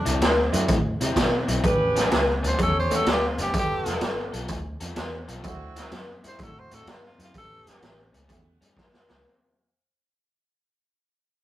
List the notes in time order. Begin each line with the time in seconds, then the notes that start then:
Already playing: D4
0.05 C2 D3 F#3 C4 E4, closed hi-hat
0.21 D2, snare, closed hi-hat
0.52 F#2 D3 F#3 A3 C4 D4 E4 F#4, closed hi-hat
0.68 A2, kick, closed hi-hat
1.01 C3 D3 F#3 C4 E4, closed hi-hat
1.15 B2 A3 C4 D4 E4 F#4, kick, snare, closed hi-hat
1.48 B1 D3 F#3 C4 E4, closed hi-hat
1.63 A1 C#4 G4 B4, kick, closed hi-hat
1.96 A2 G3 B3 C#4, snare, closed hi-hat
2.11 C#2, snare, closed hi-hat
2.43 D2 A2 G3 B3 C#4, closed hi-hat
2.48 C5
2.58 E2 C#4 G4 C#5, kick, closed hi-hat
2.63 A4
2.80 C5
2.90 E2 A2 G3 A3 B3 C#4 E4 G4, closed hi-hat
2.95 A4
3.06 D2, snare, closed hi-hat
3.11 G4
3.27 F4
3.38 F#1 A2 G3 B3 C#4, closed hi-hat
3.42 G4
3.54 G1 B3 F4 A4, kick, closed hi-hat
3.59 G4
3.86 F1 G3 B3 F4 A4, snare, closed hi-hat
4.01 G1, snare, closed hi-hat
4.33 B1 G3 B3 F4 A4, closed hi-hat
4.48 D2, kick, closed hi-hat
4.80 F2 G3 B3 F4 A4, closed hi-hat
4.96 E2 A3 B3 D4 F4 G4, snare, closed hi-hat
5.28 B1 G3 B3 F4 A4, closed hi-hat
5.43 D2 A3 C4 D4 E4 F#4, kick, closed hi-hat
5.76 D3 F#3 C4 E4, snare, closed hi-hat
5.91 F#2, snare, closed hi-hat
6.24 G2 D3 F#3 C4 E4, closed hi-hat
6.28 C5
6.39 A2 C4 E4 F#4, kick, closed hi-hat
6.43 A4
6.59 C5
6.71 A2 D3 F#3 C4 E4 A4, closed hi-hat
6.86 G2, snare, closed hi-hat
6.91 F4
7.06 F4
7.18 F#2 D3 F#3 C4 E4, closed hi-hat
7.23 F4
7.34 A1 B3 C#4 G4, kick, closed hi-hat
7.38 A4
7.66 G1 A2 G3 B3 C#4, snare, closed hi-hat
7.82 A1, snare, closed hi-hat
8.13 C#2 A2 G3 B3 C#4, closed hi-hat
8.28 E2 A3 B3 C#4 E4 G4, kick, closed hi-hat
8.61 G2 A2 G3 B3 C#4, closed hi-hat
8.77 F#2, kick, snare
8.93 snare
9.09 C#2 A2 G3 B3 C#4, snare